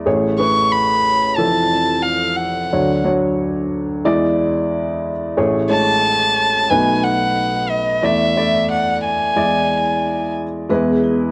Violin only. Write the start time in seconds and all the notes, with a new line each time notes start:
0.40 C#6
0.72 B5
1.36 A5
2.03 F5
2.37 F#5
5.70 A5
6.70 G#5
7.04 F#5
7.70 D#5
8.04 E5
8.72 F#5
9.05 G#5